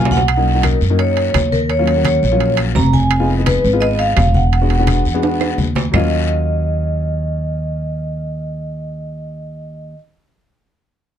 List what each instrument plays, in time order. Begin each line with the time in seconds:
Already playing: upright bass B1, grand piano F#3 A#3 C#4 F4, vibraphone G#5
0.05 low timbale
0.11 vibraphone F#5, high conga, short guiro
0.17 low timbale
0.28 high conga, high timbale, long guiro, claves
0.37 grand piano F#3 A#3 C#4 D#4
0.47 high conga
0.55 grand piano F#3 A#3 C#4 D#4
0.63 vibraphone A#4, high conga, high timbale, low timbale, short guiro, claves
0.81 upright bass F#2, high conga, short guiro
0.90 grand piano F#3 A#3 C#4 D#4
0.99 vibraphone C#5, high conga, high timbale, long guiro
1.17 high conga, high timbale
1.34 upright bass D#2, high conga, high timbale, low timbale, short guiro, claves
1.52 vibraphone A#4, high conga, short guiro
1.69 vibraphone C#5, high conga, high timbale, long guiro
1.79 grand piano F#3 A#3 C#4 F4
1.87 high conga, high timbale
1.96 grand piano F#3 A#3 C#4 F#4
2.05 vibraphone C#5, high conga, high timbale, low timbale, short guiro, claves
2.23 upright bass A#1, short guiro
2.32 grand piano F#3 A#3 C#4 F4
2.40 high conga, high timbale, long guiro
2.57 high conga, high timbale, claves
2.75 upright bass F1, vibraphone A#5, high conga, low timbale, short guiro
2.93 vibraphone G#5, high conga, short guiro
3.11 high conga, high timbale, long guiro, claves
3.20 grand piano G#3 B3 D#4 F4
3.28 high conga
3.39 grand piano G#3 B3 D#4 G#4
3.46 vibraphone B4, high conga, high timbale, low timbale, short guiro, claves
3.64 upright bass G#1, high conga, short guiro
3.73 grand piano G#3 B3 D#4 F4
3.81 vibraphone D#5, high conga, high timbale, long guiro
3.99 vibraphone F5, high conga, high timbale
4.17 upright bass E1, high conga, high timbale, low timbale, short guiro, claves
4.34 vibraphone F#5, high conga, short guiro
4.52 high conga, high timbale, long guiro
4.62 grand piano G#3 B3 D4 F#4
4.69 high conga, high timbale
4.79 grand piano G#3 B3 D4 F#4
4.87 high conga, high timbale, low timbale, short guiro, claves
5.05 upright bass E2, short guiro
5.14 grand piano G#3 B3 D4 F#4
5.23 high conga, high timbale, long guiro
5.41 high conga, high timbale, claves
5.58 upright bass D#2, high conga, short guiro
5.75 high conga, low timbale, short guiro
5.92 upright bass D#2, grand piano F#3 A#3 C#4, vibraphone D#5, low conga, low timbale, long guiro, claves
5.96 grand piano F4